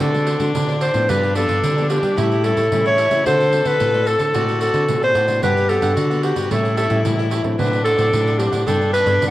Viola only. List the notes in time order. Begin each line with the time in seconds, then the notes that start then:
0.01 D4
1.09 D4
2.17 E4
2.72 E4
3.26 A4
4.34 F#4
5.42 G4
5.96 F#4
6.51 E4
7.59 D4
8.67 D4